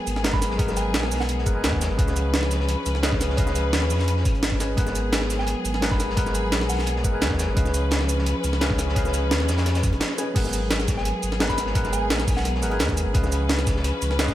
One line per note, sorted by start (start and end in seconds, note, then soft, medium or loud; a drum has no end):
0.00 1.96 F#3 medium
0.00 0.21 G#3 medium
0.00 1.96 B3 medium
0.00 0.22 G#4 medium
0.00 1.96 G#4 medium
0.00 0.22 A#4 medium
0.00 0.23 B4 medium
0.00 0.23 F#5 loud
0.07 0.96 G#1 medium
0.07 closed hi-hat medium
0.07 shaker medium
0.16 snare soft
0.23 0.56 G#3 medium
0.23 0.57 G#4 medium
0.23 0.57 A#4 medium
0.23 0.57 B4 medium
0.23 0.57 F#5 loud
0.23 snare loud
0.23 closed hi-hat medium
0.33 0.54 B5 medium
0.33 kick loud
0.33 snare medium
0.42 snare medium
0.42 closed hi-hat medium
0.42 shaker medium
0.50 snare soft
0.58 1.44 G#3 medium
0.58 1.44 G#4 medium
0.58 1.44 A#4 medium
0.58 1.45 B4 medium
0.58 1.45 F#5 loud
0.58 kick loud
0.58 closed hi-hat medium
0.68 snare soft
0.68 high bongo medium
0.68 shaker soft
0.77 0.98 G#5 medium
0.77 closed hi-hat medium
0.77 shaker medium
0.94 1.13 A#1 medium
0.94 snare loud
0.94 closed hi-hat loud
0.94 closed hi-hat medium
1.03 snare medium
1.12 1.48 B1 medium
1.12 closed hi-hat medium
1.12 open hi-hat medium
1.12 shaker medium
1.20 1.69 F#5 medium
1.20 snare soft
1.29 closed hi-hat medium
1.38 snare soft
1.45 1.65 G#1 medium
1.45 1.52 G#3 medium
1.45 1.53 G#4 medium
1.45 1.53 A#4 medium
1.45 1.53 B4 medium
1.45 1.53 F#5 medium
1.45 kick loud
1.45 closed hi-hat medium
1.45 shaker medium
1.54 1.96 G#3 medium
1.54 1.96 G#4 medium
1.54 1.97 A#4 medium
1.54 1.97 B4 medium
1.54 1.97 G#5 medium
1.64 1.89 D#2 medium
1.64 snare loud
1.64 closed hi-hat medium
1.64 closed hi-hat loud
1.72 kick medium
1.72 snare soft
1.81 snare loud
1.81 closed hi-hat medium
1.81 shaker medium
1.90 1.98 G#1 loud
1.97 2.76 C#2 loud
1.97 4.75 F3 medium
1.97 3.00 C#4 medium
1.97 4.75 C#4 medium
1.97 3.01 G#4 medium
1.97 3.01 B4 medium
1.97 4.75 B4 medium
1.97 3.02 D#5 medium
1.97 3.02 F5 loud
1.97 kick loud
1.97 closed hi-hat medium
2.08 snare soft
2.08 high bongo medium
2.08 shaker soft
2.16 closed hi-hat medium
2.16 shaker medium
2.34 snare loud
2.34 closed hi-hat medium
2.42 snare medium
2.42 snare soft
2.51 snare medium
2.51 closed hi-hat medium
2.51 shaker medium
2.60 snare medium
2.69 closed hi-hat medium
2.86 3.75 C#2 medium
2.86 closed hi-hat medium
2.86 shaker medium
2.95 snare soft
3.02 3.35 C#4 loud
3.02 3.36 G#4 medium
3.02 3.36 B4 medium
3.02 3.36 D#5 medium
3.02 3.37 F5 loud
3.02 snare loud
3.02 closed hi-hat medium
3.12 kick loud
3.12 snare medium
3.21 snare medium
3.21 closed hi-hat medium
3.21 shaker medium
3.30 snare soft
3.36 4.22 C#4 medium
3.36 4.23 G#4 medium
3.36 4.23 B4 medium
3.36 4.24 D#5 medium
3.36 4.24 F5 loud
3.36 kick loud
3.36 closed hi-hat medium
3.47 snare soft
3.47 high bongo medium
3.47 shaker soft
3.55 closed hi-hat medium
3.55 shaker medium
3.73 3.92 D#2 medium
3.73 snare loud
3.73 closed hi-hat medium
3.82 snare soft
3.90 4.27 F2 medium
3.90 closed hi-hat medium
3.90 open hi-hat medium
3.90 shaker medium
3.99 snare soft
4.08 closed hi-hat medium
4.17 snare soft
4.25 4.76 G#1 loud
4.25 kick loud
4.25 closed hi-hat medium
4.25 shaker medium
4.35 closed hi-hat soft
4.43 snare loud
4.43 closed hi-hat medium
4.52 kick medium
4.52 snare soft
4.59 4.75 C#4 medium
4.59 4.75 G#4 medium
4.59 4.76 B4 medium
4.59 4.76 D#5 medium
4.59 4.76 G#5 medium
4.59 snare medium
4.59 closed hi-hat medium
4.59 shaker medium
4.76 5.55 G#1 loud
4.76 7.54 F#3 medium
4.76 5.79 G#3 medium
4.76 7.54 B3 medium
4.76 5.80 G#4 medium
4.76 7.54 G#4 medium
4.76 5.80 A#4 medium
4.76 5.81 B4 medium
4.76 5.81 F#5 loud
4.76 kick loud
4.76 closed hi-hat medium
4.86 snare soft
4.86 high bongo soft
4.86 shaker soft
4.95 closed hi-hat medium
4.95 shaker medium
5.12 snare loud
5.12 closed hi-hat medium
5.22 snare medium
5.22 snare soft
5.30 snare medium
5.30 closed hi-hat medium
5.30 shaker medium
5.39 5.60 G#5 medium
5.39 snare medium
5.47 closed hi-hat medium
5.65 6.54 G#1 medium
5.65 closed hi-hat medium
5.65 shaker medium
5.74 snare soft
5.81 6.14 G#3 medium
5.81 6.15 G#4 medium
5.81 6.15 A#4 medium
5.81 6.15 B4 medium
5.81 6.15 F#5 loud
5.81 snare loud
5.81 closed hi-hat medium
5.91 6.12 B5 medium
5.91 kick loud
5.91 snare medium
6.00 snare medium
6.00 closed hi-hat medium
6.00 shaker medium
6.10 snare soft
6.15 7.02 G#3 medium
6.15 7.02 G#4 medium
6.15 7.02 A#4 medium
6.15 7.03 B4 medium
6.15 7.03 F#5 loud
6.15 kick loud
6.15 closed hi-hat medium
6.15 closed hi-hat loud
6.26 snare soft
6.26 high bongo soft
6.26 shaker soft
6.34 6.56 B5 medium
6.34 closed hi-hat medium
6.34 shaker medium
6.52 6.71 A#1 medium
6.52 snare loud
6.52 closed hi-hat loud
6.52 closed hi-hat medium
6.61 snare medium
6.61 snare soft
6.69 7.06 B1 medium
6.69 6.96 F#5 loud
6.69 closed hi-hat medium
6.69 open hi-hat medium
6.69 shaker medium
6.79 snare soft
6.87 closed hi-hat medium
6.96 snare soft
7.03 7.23 G#1 medium
7.03 7.10 G#3 medium
7.03 7.11 G#4 medium
7.03 7.11 A#4 medium
7.03 7.11 B4 medium
7.03 7.12 F#5 medium
7.03 kick loud
7.03 closed hi-hat medium
7.03 shaker medium
7.12 7.54 G#3 medium
7.12 7.54 G#4 medium
7.12 7.55 A#4 medium
7.12 7.55 B4 medium
7.12 7.55 G#5 medium
7.21 7.47 D#2 medium
7.21 snare loud
7.21 closed hi-hat medium
7.31 kick medium
7.31 snare soft
7.39 snare loud
7.39 closed hi-hat medium
7.39 shaker medium
7.48 7.56 G#1 loud
7.55 8.34 C#2 loud
7.55 10.33 F3 medium
7.55 8.58 C#4 loud
7.55 10.33 C#4 medium
7.55 8.59 G#4 medium
7.55 8.59 B4 medium
7.55 10.33 B4 medium
7.55 8.60 D#5 medium
7.55 8.60 F5 loud
7.55 kick loud
7.55 closed hi-hat loud
7.55 closed hi-hat medium
7.65 snare soft
7.65 high bongo soft
7.65 shaker soft
7.74 closed hi-hat medium
7.74 shaker medium
7.91 snare loud
7.91 closed hi-hat medium
7.91 closed hi-hat loud
8.01 snare medium
8.01 snare soft
8.09 closed hi-hat medium
8.09 shaker medium
8.18 snare medium
8.26 closed hi-hat medium
8.44 9.33 C#2 medium
8.44 closed hi-hat medium
8.44 shaker medium
8.53 snare soft
8.61 8.94 C#4 loud
8.61 8.94 G#4 medium
8.61 8.94 B4 medium
8.61 8.94 D#5 medium
8.61 8.95 F5 loud
8.61 snare loud
8.61 closed hi-hat medium
8.70 kick loud
8.70 snare medium
8.78 snare medium
8.78 closed hi-hat medium
8.78 shaker medium
8.89 snare soft
8.95 9.81 C#4 medium
8.95 9.81 G#4 medium
8.95 9.82 B4 medium
8.95 9.82 D#5 medium
8.95 9.82 F5 loud
8.95 kick loud
8.95 closed hi-hat medium
8.95 closed hi-hat loud
9.05 snare soft
9.05 high bongo medium
9.05 shaker soft
9.14 closed hi-hat medium
9.14 shaker medium
9.31 9.50 D#2 medium
9.31 snare loud
9.31 closed hi-hat loud
9.31 closed hi-hat medium
9.40 snare medium
9.40 snare soft
9.49 9.94 F2 medium
9.49 snare loud
9.49 closed hi-hat medium
9.49 shaker medium
9.58 snare soft
9.58 snare loud
9.58 closed hi-hat medium
9.66 snare soft
9.66 closed hi-hat loud
9.66 closed hi-hat medium
9.68 snare loud
9.75 snare loud
9.75 closed hi-hat medium
9.75 shaker soft
9.83 kick loud
9.83 closed hi-hat medium
9.83 shaker medium
9.93 10.01 G#1 loud
9.93 closed hi-hat soft
9.93 high bongo soft
10.00 snare loud
10.00 closed hi-hat medium
10.10 snare soft
10.17 10.33 C#4 medium
10.17 10.33 G#4 medium
10.17 10.34 B4 medium
10.17 10.34 D#5 medium
10.17 10.34 G#5 medium
10.17 closed hi-hat medium
10.17 high bongo medium
10.17 shaker medium
10.34 11.13 G#1 loud
10.34 13.12 F#3 medium
10.34 11.38 G#3 medium
10.34 13.12 B3 medium
10.34 11.38 G#4 medium
10.34 13.12 G#4 medium
10.34 11.38 A#4 medium
10.34 11.39 B4 medium
10.34 11.39 F#5 loud
10.34 kick loud
10.34 closed hi-hat loud
10.34 closed hi-hat medium
10.34 crash loud
10.45 snare soft
10.45 high bongo soft
10.45 shaker soft
10.53 closed hi-hat medium
10.53 shaker medium
10.71 snare loud
10.71 closed hi-hat medium
10.71 closed hi-hat loud
10.80 snare medium
10.80 shaker soft
10.88 kick loud
10.88 snare soft
10.88 closed hi-hat medium
10.88 shaker medium
10.97 11.18 G#5 medium
10.97 snare medium
11.05 closed hi-hat loud
11.05 closed hi-hat medium
11.22 12.12 G#1 medium
11.22 closed hi-hat medium
11.22 shaker medium
11.32 snare soft
11.40 11.72 G#3 loud
11.40 11.73 G#4 medium
11.40 11.73 A#4 medium
11.40 11.74 B4 medium
11.40 11.74 F#5 loud
11.40 snare loud
11.40 closed hi-hat medium
11.40 closed hi-hat loud
11.49 11.70 B5 medium
11.49 kick medium
11.49 snare medium
11.49 shaker soft
11.58 snare medium
11.58 closed hi-hat medium
11.58 shaker medium
11.66 snare soft
11.74 12.60 G#3 medium
11.74 12.60 G#4 medium
11.74 12.61 A#4 medium
11.74 12.61 B4 medium
11.74 12.61 F#5 loud
11.74 kick loud
11.74 closed hi-hat loud
11.84 snare soft
11.84 high bongo medium
11.84 shaker soft
11.93 12.14 G#5 medium
11.93 closed hi-hat medium
11.93 shaker medium
12.10 12.29 A#1 medium
12.10 snare loud
12.10 closed hi-hat loud
12.10 closed hi-hat medium
12.19 snare soft
12.19 snare medium
12.19 shaker soft
12.27 12.64 B1 medium
12.27 kick loud
12.27 closed hi-hat medium
12.27 open hi-hat medium
12.27 shaker medium
12.37 12.85 F#5 medium
12.37 snare soft
12.45 snare soft
12.45 closed hi-hat medium
12.55 snare soft
12.62 12.82 G#1 medium
12.62 12.69 G#3 medium
12.62 12.69 G#4 medium
12.62 12.69 A#4 medium
12.62 12.70 B4 medium
12.62 12.70 F#5 loud
12.62 closed hi-hat medium
12.62 shaker medium
12.70 13.12 G#3 medium
12.70 13.12 G#4 medium
12.70 13.13 A#4 medium
12.70 13.13 B4 medium
12.70 13.14 G#5 medium
12.70 closed hi-hat soft
12.70 high bongo soft
12.79 13.05 D#2 medium
12.79 snare loud
12.79 closed hi-hat medium
12.89 kick medium
12.89 snare soft
12.89 shaker soft
12.97 closed hi-hat medium
12.97 shaker medium
13.07 13.14 G#1 loud
13.13 13.92 C#2 loud
13.13 14.34 F3 medium
13.13 14.17 C#4 medium
13.13 14.34 C#4 medium
13.13 14.17 G#4 medium
13.13 14.17 B4 medium
13.13 14.34 B4 medium
13.13 14.18 D#5 medium
13.13 14.18 F5 loud
13.13 kick loud
13.13 closed hi-hat medium
13.23 snare soft
13.23 high bongo medium
13.23 shaker soft
13.32 closed hi-hat medium
13.32 shaker medium
13.49 snare loud
13.49 closed hi-hat medium
13.59 snare medium
13.59 shaker soft
13.67 kick loud
13.67 snare medium
13.67 closed hi-hat medium
13.67 shaker medium
13.76 snare medium
13.84 closed hi-hat medium
14.02 14.34 C#2 medium
14.02 closed hi-hat medium
14.02 shaker medium
14.11 snare soft
14.19 14.34 C#4 loud
14.19 14.34 G#4 medium
14.19 14.34 B4 medium
14.19 14.34 D#5 medium
14.19 14.34 F5 loud
14.19 snare loud
14.19 closed hi-hat medium
14.28 kick medium
14.28 snare medium
14.28 shaker soft